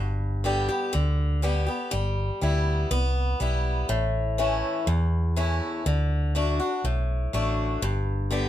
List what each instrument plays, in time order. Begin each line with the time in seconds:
Already playing: fingered electric bass G1, steel-string acoustic guitar G2
0.44 steel-string acoustic guitar D3 G3 B3 G4
0.69 steel-string acoustic guitar B3 G4
0.93 fingered electric bass D2, steel-string acoustic guitar D3
1.42 steel-string acoustic guitar D3 G3 B3 G4
1.66 steel-string acoustic guitar B3 G4
1.91 fingered electric bass G1, steel-string acoustic guitar G3
2.41 fingered electric bass D2, steel-string acoustic guitar G3 B3 E4
2.91 fingered electric bass C2, steel-string acoustic guitar B3
3.40 fingered electric bass B1, steel-string acoustic guitar G3 B3 E4
3.89 fingered electric bass A1, steel-string acoustic guitar A2
4.38 steel-string acoustic guitar E3 A3 C#4 E4
4.87 fingered electric bass E2, steel-string acoustic guitar E2
5.36 steel-string acoustic guitar E3 A3 C#4 E4
5.86 fingered electric bass D2, steel-string acoustic guitar D3
6.35 steel-string acoustic guitar D3 A3 D4 F#4
6.60 steel-string acoustic guitar D4 F#4
6.84 fingered electric bass B1, steel-string acoustic guitar A2
7.33 fingered electric bass A1, steel-string acoustic guitar D3 A3 D4 F#4
7.82 fingered electric bass G1, steel-string acoustic guitar G2
8.31 steel-string acoustic guitar D3 G3 B3 G4